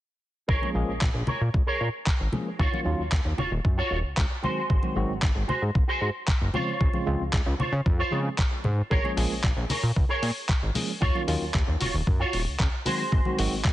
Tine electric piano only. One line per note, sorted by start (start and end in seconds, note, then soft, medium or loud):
0.62 0.73 F3 medium
0.62 0.73 G#3 medium
0.62 0.73 A#3 medium
0.62 0.73 C#4 medium
0.62 0.73 G#4 medium
0.74 0.91 F3 medium
0.74 0.91 G#3 medium
0.74 0.91 A#3 medium
0.74 0.91 C#4 medium
0.74 0.91 G#4 loud
2.32 2.48 F3 medium
2.32 2.49 G#3 medium
2.32 2.49 A#3 medium
2.32 2.49 C#4 medium
2.32 2.49 G#4 medium
2.72 2.84 D#3 medium
2.72 2.84 F#3 medium
2.72 2.84 A#3 medium
2.72 2.84 C#4 medium
2.72 2.84 F4 medium
2.85 3.01 D#3 medium
2.85 3.01 F#3 medium
2.85 3.01 A#3 medium
2.85 3.01 C#4 medium
2.85 3.01 F4 medium
4.43 4.59 D#3 medium
4.43 4.59 F#3 medium
4.43 4.59 G#3 medium
4.43 4.59 C4 medium
4.43 4.60 F#4 medium
4.83 4.94 D#3 medium
4.83 4.94 F#3 medium
4.83 4.94 G#3 medium
4.83 4.94 C4 medium
4.83 4.95 F#4 medium
4.96 5.12 D#3 medium
4.96 5.12 F#3 medium
4.96 5.12 G#3 medium
4.96 5.12 C4 medium
4.96 5.12 F#4 medium
6.54 6.70 C#3 medium
6.54 6.70 F3 medium
6.54 6.70 G#3 medium
6.54 6.70 C4 medium
6.54 6.70 F4 medium
6.93 7.04 C#3 medium
6.93 7.05 F3 medium
6.93 7.05 G#3 medium
6.93 7.05 C4 medium
6.93 7.05 F4 medium
7.06 7.22 C#3 medium
7.06 7.22 F3 medium
7.06 7.22 G#3 medium
7.06 7.22 C4 medium
7.06 7.23 F4 medium
8.11 8.27 C#3 medium
8.11 8.27 F3 medium
8.11 8.28 G#3 medium
8.11 8.28 C4 medium
8.11 8.28 G#4 loud
9.04 9.15 F3 medium
9.04 9.15 G#3 medium
9.04 9.15 A#3 medium
9.04 9.15 C#4 medium
9.04 9.16 G#4 medium
9.17 9.33 F3 medium
9.17 9.33 G#3 medium
9.17 9.33 A#3 medium
9.17 9.33 C#4 medium
9.17 9.33 G#4 medium
10.74 10.91 F3 medium
10.74 10.91 G#3 medium
10.74 10.91 A#3 medium
10.74 10.91 C#4 medium
10.74 10.91 G#4 medium
11.15 11.26 D#3 medium
11.15 11.26 F#3 medium
11.15 11.26 A#3 medium
11.15 11.26 C#4 medium
11.15 11.26 F4 medium
11.27 11.43 D#3 medium
11.27 11.44 F#3 medium
11.27 11.44 A#3 medium
11.27 11.44 C#4 medium
11.27 11.44 F4 medium
12.86 13.01 D#3 medium
12.86 13.02 F#3 medium
12.86 13.02 G#3 medium
12.86 13.02 C4 medium
12.86 13.02 F#4 medium
13.25 13.36 D#3 medium
13.25 13.36 F#3 medium
13.25 13.37 G#3 medium
13.25 13.37 C4 medium
13.25 13.37 F#4 medium
13.38 13.54 D#3 medium
13.38 13.54 F#3 medium
13.38 13.54 G#3 medium
13.38 13.54 C4 medium
13.38 13.55 F#4 loud